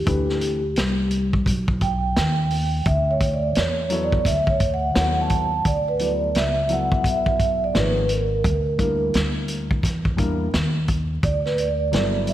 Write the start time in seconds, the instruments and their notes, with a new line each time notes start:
Already playing: vibraphone G4
0.05 upright bass D2, grand piano E3 A3 D4 G4 B4, kick, closed hi-hat
0.29 snare
0.41 closed hi-hat
0.76 upright bass C2, snare, closed hi-hat
1.11 closed hi-hat
1.33 kick
1.46 upright bass B1, kick, closed hi-hat
1.68 kick
1.81 vibraphone G5, kick, closed hi-hat
2.17 upright bass D#2, snare, closed hi-hat
2.51 open hi-hat
2.85 upright bass D2, vibraphone E5, kick, closed hi-hat
3.11 vibraphone C#5
3.20 kick, closed hi-hat
3.34 vibraphone D5
3.55 upright bass E2, vibraphone C#5, snare, closed hi-hat
3.90 grand piano F#3 B3 E4 A4 C#5, closed hi-hat
4.04 vibraphone D5
4.12 kick
4.25 upright bass D2, vibraphone E5, kick, snare, closed hi-hat
4.47 vibraphone C#5, kick
4.60 kick, closed hi-hat
4.74 vibraphone F#5
4.94 upright bass D#2, grand piano F#3 B3 E4 A4 C#5, vibraphone F#5, snare, closed hi-hat
5.21 vibraphone A5
5.30 kick, closed hi-hat
5.65 upright bass D2, vibraphone D5, kick, closed hi-hat
5.88 vibraphone B4
5.99 grand piano F#3 B3 E4 A4 D5, vibraphone D5, closed hi-hat
6.35 upright bass C#2, vibraphone E5, snare, closed hi-hat
6.69 grand piano F#3 B3 E4 A4 E5, vibraphone F#5, closed hi-hat
6.92 vibraphone F#5, kick
7.04 upright bass B1, vibraphone E5, kick, closed hi-hat
7.26 kick
7.39 kick, closed hi-hat
7.64 vibraphone D5
7.74 upright bass G#1, grand piano F3 A#3 D#4 G#4 C#5, vibraphone B4, snare, closed hi-hat
8.09 vibraphone A#4, closed hi-hat
8.44 upright bass D2, kick, closed hi-hat
8.78 grand piano G3 A#3 D4 E4 A#4, kick, closed hi-hat
9.14 upright bass D2, snare, closed hi-hat
9.48 closed hi-hat
9.71 kick
9.83 upright bass E2, kick, snare, closed hi-hat
10.05 kick
10.17 grand piano G3 A#3 D4 E4 A#4, kick, closed hi-hat
10.54 upright bass D#2, snare, closed hi-hat
10.88 kick, closed hi-hat
11.23 upright bass D2, vibraphone D5, kick, closed hi-hat
11.46 vibraphone B4, snare
11.58 vibraphone D5, closed hi-hat
11.91 upright bass G1, grand piano F#3 B3 E4 A4 D5, snare, closed hi-hat
12.27 vibraphone E5, closed hi-hat